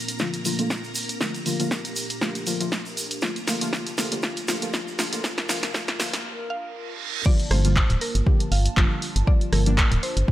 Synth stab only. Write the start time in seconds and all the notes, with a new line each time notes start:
0.20 D3 F3 A3 A#3 F4
0.45 D3 F3 A3 A#3 F4
0.59 D3 F3 A3 A#3 F4
1.20 D3 F3 A3 A#3 F4
1.46 D3 F3 A3 A#3 F4
1.59 D3 F3 A3 A#3 F4
2.21 D3 F3 A3 A#3 F4
2.46 D3 F3 A3 A#3 F4
2.60 D3 F3 A3 A#3 F4
3.22 D3 F3 A3 A#3 F4
3.47 D3 F3 A3 A#3 F4
3.61 D3 F3 A3 A#3 F4
3.73 D3 F3 F4
3.98 D3 F3 A3 A#3 F4
4.12 D3 F3 A3 A#3 F4
4.23 D3 F3 A3 A#3 F4
4.48 D3 F3 A3 A#3 F4
4.62 D3 F3 A3 A#3 F4
4.73 D3 F3 A3 A#3 F4
4.99 D3 F3 A3 A#3 F4
5.12 D3 F3 A3 A#3 F4
5.24 D3 F3 A3 A#3 F4
5.49 D3 F3 A3 A#3 F4
5.74 D3 F3 A3 A#3 F4
5.99 D3 F3 A3 A#3 F4
7.25 D3 F3 G3 A#3 F4
7.51 D3 F3 G3 A#3 F4
7.64 D3 F3 G3 A#3 F4
8.26 D3 F3 G3 A#3 G4
8.77 D3 F3 G3 A#3 F4
9.27 D3 F3 G3 A#3 F4
9.52 D3 F3 G3 A#3 A4
9.66 D3 F3 G3 A#3 D4